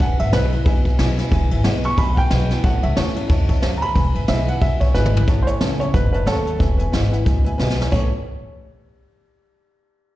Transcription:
0.00 E1 E2 B4 E5 F#5 G#5, kick
0.19 G#1 B4 E5 F#5, ride
0.32 B1 E3 G#3 B3 E4 B4 E5 B5, snare, ride
0.51 B3 E4 B4 E5 B5, ride
0.65 B1 B2 B4 E5 G#5, kick, ride
0.84 B4 E5 G#5, kick, ride
0.98 B1 E3 G#3 B3 E4 B4 E5 G#5, snare, ride
1.18 B3 E4 B4 E5 G#5, snare, ride
1.31 E1 E2 B4 E5 G#5, kick, ride
1.50 G#1 B4 E5 G#5, ride
1.64 B1 E3 G#3 B3 E4 B4 E5 F#5, snare, ride
1.83 B3 E4 B4 E5 G#5 C#6, ride
1.97 B1 B2 B4 E5 G#5 B5, kick, ride
2.14 B4 E5 F#5, kick, ride
2.18 G5 G#5
2.30 B1 E3 G#3 B3 E4 B4 E5 F#5, snare, ride
2.50 B3 E4 B4 E5 G#5, snare, ride
2.63 A1 A2 C#5 E5 F#5 A5, kick, ride
2.83 C#2 C#5 E5 A5, ride
2.96 E2 E3 A3 C#4 E4 C#5 E5 A5, snare, ride
3.16 C#4 E4 C#5 E5 A5, ride
3.28 E2 G#2 C#5 E5 A5, kick, ride
3.49 C#5 E5 A5, kick, ride
3.62 D2 F#2 C#5 E5 A5, snare, ride
3.78 A#5
3.82 C#5 E5 A5 B5, ride
3.95 E1 E2 B4 E5 G#5, kick, ride
4.14 G#1 B4 E5 G#5, ride
4.27 B1 E3 G#3 B3 E4 B4 E5 G#5, snare, ride
4.47 B3 E4 B4 E5 F#5 G#5, ride
4.61 B1 B2 B4 E5 G#5, kick, ride
4.80 B4 C#5 E5 G#5, kick, ride
4.94 G#1 E3 G#3 B3 E4 B4 E5 G#5, snare
5.06 mid tom
5.13 B3 E4 B4 E5 G#5, floor tom
5.27 A1 A2 C#5 E5 A5, kick, closed hi-hat
5.43 C5
5.47 C#5 E5 G#5, closed hi-hat
5.60 C#2 E3 A3 C#4 E4 C#5 E5 A5, snare, closed hi-hat
5.80 C#4 E4 C#5 E5 A5, closed hi-hat
5.93 F#1 G#2 B4 C#5 E5 A5, kick, closed hi-hat
6.13 B4 C#5 E5 A5, closed hi-hat
6.26 D#2 F#2 A4 C#5 E5 F#5, snare, closed hi-hat
6.45 C#5 E5 A5, closed hi-hat
6.59 E1 E2 B4 E5 G#5, kick, closed hi-hat
6.78 B4 E5 G#5, closed hi-hat
6.92 G#1 E3 G#3 B3 E4 B4 E5 F#5, snare, closed hi-hat
7.11 B3 E4 B4 E5 F#5, closed hi-hat
7.25 D2 B2 B4 E5 G#5, kick, closed hi-hat
7.44 B4 E5 G#5, closed hi-hat
7.58 B1 E3 G#3 B3 E4 B4 E5 G#5, snare
7.70 snare
7.78 B3 E4 B4 E5 G#5, snare
7.92 A1 A2 E3 A3 C#4 E4 C#5 E5 A5, kick, crash

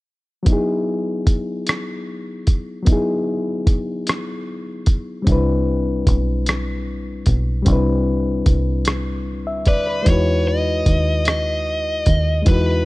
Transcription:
0.43 F#3 B3, kick, closed hi-hat
0.48 D#4 E4
0.53 G#4
1.27 kick, closed hi-hat
1.66 cross-stick, closed hi-hat
2.47 kick, closed hi-hat
2.82 F#3 B3, closed hi-hat
2.87 D#4 E4, kick
2.92 G#4
3.67 kick, closed hi-hat
4.06 cross-stick, closed hi-hat
4.86 kick, closed hi-hat
5.22 G3 C4
5.27 C2 D4 E4, kick, closed hi-hat
5.32 B4
6.07 B1, kick, closed hi-hat
6.46 cross-stick, closed hi-hat
7.26 B1, kick, closed hi-hat
7.62 G3 C4, closed hi-hat
7.66 C2 D4 E4, kick
7.73 B4
8.46 C2, kick, closed hi-hat
8.85 cross-stick, closed hi-hat
9.47 E5
9.66 D#2 B4 D5, kick, closed hi-hat
9.87 B4
10.02 G#3 D#4, closed hi-hat
10.06 E2 E4 F#4 C#5, kick
10.12 B4
10.48 D#5
10.86 D#2, kick, closed hi-hat
11.25 D#5, cross-stick, closed hi-hat
12.06 D#2, kick, closed hi-hat
12.42 G#3 D#4, closed hi-hat
12.46 E2 E4 F#4 B4, kick
12.52 B4

